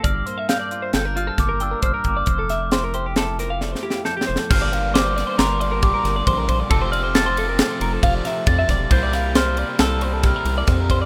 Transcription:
<<
  \new Staff \with { instrumentName = "Glockenspiel" } { \time 5/4 \key f \major \tempo 4 = 136 f'''4 g'''4 g'''8 f'''8 d'''8 e'''8 f'''8 d'''8 | f'''1 g'''4 | f'''4 d'''4 c'''4 d'''4. r8 | e'''8 f'''8 a'''2. a'''4 |
g'''4 f'''4 e'''4 f'''4. r8 | }
  \new Staff \with { instrumentName = "Clean electric guitar" } { \time 5/4 \key f \major d''8 c''16 e''16 f''16 d''8 c''16 a'16 bes'16 f'16 a'8 bes'16 g''16 bes'16 c''16 bes'8 d''16 | c''16 a'16 e''8 c''16 bes'16 c''16 g'16 a'8 bes'16 f''16 d''16 c''16 g'8 a'16 g'16 c''16 a'16 | c''16 d''16 f''8 c''8 d''16 c''16 bes'8 d''16 bes'16 g'16 bes'8 d''16 c''16 bes'16 c''16 d''16 | a'16 c''16 d''16 c''16 a'16 c''16 a'16 bes'16 a'8 bes'16 a'16 f''16 d''16 e''8 d''16 e''16 d''8 |
c''16 d''16 f''8 c''8 d''16 c''16 a'8 c''16 a'16 g'16 bes'8 d''16 c''16 bes'16 c''16 d''16 | }
  \new Staff \with { instrumentName = "Clean electric guitar" } { \time 5/4 \key f \major << { f'8 bes8 d'8 f'8 c'16 d'8. bes8 d'4 bes8 | r8 a8 e'8 g'8 e'4 a8 e'4 a8 | r1 r4 | r1 r4 |
r1 r4 | } \\ { g,2~ g,8 g4. g,4 | f,2~ f,8 f4. f,4 | r1 r4 | r1 r4 |
r1 r4 | } >> }
  \new Staff \with { instrumentName = "Overdriven electric guitar" } { \clef bass \time 5/4 \key f \major r1 r4 | r1 r4 | <g, d g bes d'>1~ <g, d g bes d'>4 | <f, c f a c'>1~ <f, c f a c'>4 |
<c g bes e'>1~ <c g bes e'>4 | }
  \new Staff \with { instrumentName = "Analog synth bass" } { \clef bass \time 5/4 \key f \major g,,8 r4. g,,4 g,,4 g,,16 r16 g,,8 | f,,1 r8 f,,16 r16 | g,,2 g,,4. g,,8 bes,,4 | f,,2~ f,,8 f,,8 f,,8 r8 f,8 e,,8 |
c,2 c,4. c,8 f,4 | }
  \new DrumStaff \with { instrumentName = "Drums" } \drummode { \time 5/4 <hh bd>8 hh8 <hh sn>8 hh8 <hh sn>8 hh8 <hh bd sn>8 hh8 <hh bd>8 <hh bd>8 | <hh bd>8 <hh sn>8 <hh sn>8 hh8 <hh sn>8 <hh sn>8 \tuplet 3/2 { sn8 sn8 sn8 sn8 sn8 sn8 } | <cymc bd>8 cymr8 <cymr sn>8 <cymr sn>8 <cymr sn>8 cymr8 <bd cymr>8 <cymr sn>8 <bd cymr>8 <bd cymr>8 | <bd cymr>8 cymr8 <cymr sn>8 cymr8 <cymr sn>8 cymr8 <bd cymr>8 <cymr sn>8 <bd cymr>8 <bd cymr sn>8 |
<bd cymr>8 <cymr sn>8 <cymr sn>8 cymr8 <cymr sn>8 cymr8 <bd cymr sn>8 cymr8 <bd cymr sn>8 <bd cymr>8 | }
>>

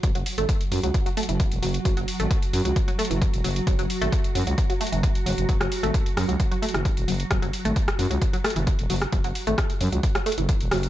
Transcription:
<<
  \new Staff \with { instrumentName = "Synth drone" } { \time 4/4 \key fis \minor \tempo 4 = 132 <fis fis'>1~ | <fis fis'>1~ | <fis fis'>1~ | <fis fis'>1~ |
<fis fis'>1~ | <fis fis'>1 | }
  \new Staff \with { instrumentName = "Synth arpeggio sound" } { \clef bass \time 4/4 \key fis \minor fis16 fis16 r16 a16 r8 fis16 fis16 r16 fis16 a16 e16 r8 fis16 r16 | fis16 fis16 r16 a16 r8 fis16 fis16 r16 fis16 a16 e16 r8 fis16 r16 | fis16 fis16 r16 a16 r8 fis16 fis16 r16 fis16 a16 e16 r8 fis16 r16 | fis16 fis16 r16 a16 r8 fis16 fis16 r16 fis16 a16 e16 r8 fis16 r16 |
fis16 fis16 r16 a16 r8 fis16 fis16 r16 fis16 a16 e16 r8 fis16 r16 | fis16 fis16 r16 a16 r8 fis16 fis16 r16 fis16 a16 e16 r8 fis16 r16 | }
  \new Staff \with { instrumentName = "FM bass" } { \clef bass \time 4/4 \key fis \minor fis,,16 fis,,16 r16 gis,,16 r8 fis,16 cis,16 r8. fis,,16 r16 e,,16 fis,,16 r16 | fis,,16 fis,,16 r16 gis,,16 r8 fis,16 cis,16 r8. fis,,16 r16 e,,16 fis,,16 r16 | fis,,16 fis,,16 r16 gis,,16 r8 fis,16 cis,16 r8. fis,,16 r8 fis,,16 fis,,16 | fis,,16 fis,,16 r16 gis,,16 r8 fis,16 cis,16 r8. fis,,16 r16 e,,16 fis,,16 r16 |
fis,,16 fis,,16 r16 gis,,16 r8 fis,16 cis,16 r8. fis,,16 r16 e,,16 fis,,16 r16 | fis,,16 fis,,16 r16 gis,,16 r8 fis,16 cis,16 r8. fis,,16 r16 e,,16 fis,,16 r16 | }
  \new DrumStaff \with { instrumentName = "Drums" } \drummode { \time 4/4 <hh bd>16 hh16 hho16 hh16 <hh bd>16 hh16 hho16 hh16 <hh bd>16 hh16 hho32 hh32 hh16 <hh bd>16 hh16 hho16 hh16 | <hh bd>16 hh16 hho16 hh16 <hh bd>16 hh16 hho16 hh16 <hh bd>16 hh16 hho32 hh32 hh16 <hh bd>16 hh16 hho16 hh16 | <hh bd>16 hh16 hho16 hh16 <hh bd>16 hh16 hho16 hh16 <hh bd>16 hh16 hho32 hh32 hh16 <hh bd>16 hh16 hho16 hh16 | <hh bd>16 <hh ss>16 hho16 hh16 <hh bd>16 hh16 <hho ss>16 hh16 <hh bd>16 hh16 hho32 hh32 <hh ss>16 <hh bd>16 hh16 hho16 hh16 |
<hh bd ss>16 hh16 hho16 hh16 <hh bd>16 <hh ss>16 hho16 hh16 <hh bd>16 hh16 <hho ss>32 hh32 hh16 <hh bd>16 hh16 hho16 <hh ss>16 | <hh bd>16 hh16 hho16 hh16 <hh bd ss>16 hh16 hho16 hh16 <hh bd>16 <hh ss>16 hho32 hh32 hh16 <hh bd>16 hh16 <hho ss>16 hh16 | }
>>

